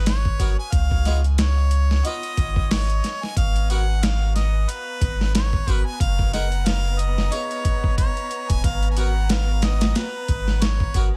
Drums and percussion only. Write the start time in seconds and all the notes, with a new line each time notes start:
0.06 snare, closed hi-hat
0.25 kick
0.39 kick, closed hi-hat
0.72 kick, closed hi-hat
0.91 kick
1.05 snare, closed hi-hat
1.24 closed hi-hat
1.38 snare, closed hi-hat
1.71 closed hi-hat
1.91 snare
2.05 closed hi-hat
2.23 closed hi-hat
2.37 kick, closed hi-hat
2.56 kick
2.71 snare, open hi-hat
2.90 closed hi-hat
3.04 snare, closed hi-hat
3.23 snare
3.37 kick, closed hi-hat
3.56 closed hi-hat
3.70 closed hi-hat
4.03 snare, closed hi-hat
4.36 snare, closed hi-hat
4.69 closed hi-hat
5.01 kick, closed hi-hat
5.21 snare
5.35 snare, closed hi-hat
5.53 kick
5.67 kick, closed hi-hat
6.00 kick, closed hi-hat
6.19 kick
6.33 snare, closed hi-hat
6.52 closed hi-hat
6.66 snare, closed hi-hat
6.99 closed hi-hat
7.18 snare
7.32 closed hi-hat
7.51 closed hi-hat
7.65 kick, closed hi-hat
7.84 kick
7.98 kick, closed hi-hat
8.17 closed hi-hat
8.31 closed hi-hat
8.50 kick, closed hi-hat
8.64 kick, closed hi-hat
8.83 closed hi-hat
8.97 closed hi-hat
9.29 snare, closed hi-hat
9.62 snare, closed hi-hat
9.81 snare, closed hi-hat
9.95 snare, closed hi-hat
10.28 kick, closed hi-hat
10.48 snare
10.62 snare, closed hi-hat
10.80 kick
10.94 kick, closed hi-hat